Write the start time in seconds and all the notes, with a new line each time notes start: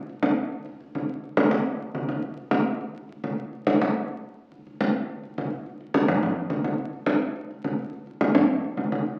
0.09 high conga
0.23 high conga
0.37 high conga
0.52 high conga
0.66 high conga
0.80 high conga
0.95 high conga
1.09 high conga
1.24 high conga
1.37 high conga
1.51 high conga
1.66 high conga
1.80 high conga
1.95 high conga
2.09 high conga
2.23 high conga
2.37 high conga
2.51 high conga
2.66 high conga
2.81 high conga
2.95 high conga
3.09 high conga
3.24 high conga
3.38 high conga
3.53 high conga
3.67 high conga
3.81 high conga
4.52 high conga
4.67 high conga
4.81 high conga
4.94 high conga
5.09 high conga
5.23 high conga
5.38 high conga
5.52 high conga
5.66 high conga
5.81 high conga
5.94 high conga
6.08 high conga, low conga
6.23 high conga, low conga
6.37 high conga
6.50 high conga
6.64 high conga
6.79 high conga
6.93 high conga
7.06 high conga
7.22 high conga
7.36 high conga
7.51 high conga
7.64 high conga
7.79 high conga
7.93 high conga
8.07 high conga
8.21 high conga
8.35 high conga, low conga
8.49 high conga
8.64 high conga
8.77 high conga
8.92 high conga
9.07 high conga